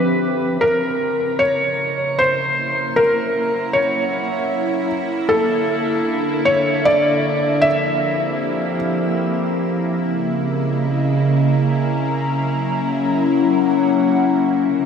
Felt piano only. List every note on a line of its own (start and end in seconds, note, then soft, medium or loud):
0.00 0.63 B4 medium
0.61 1.42 A#4 medium
1.39 2.20 C#5 medium
2.19 2.98 C5 medium
2.96 3.76 A#4 medium
3.73 4.86 C#5 medium
5.29 6.50 A4 medium
6.45 6.86 C#5 medium
6.85 7.66 D5 medium
7.62 8.75 E5 medium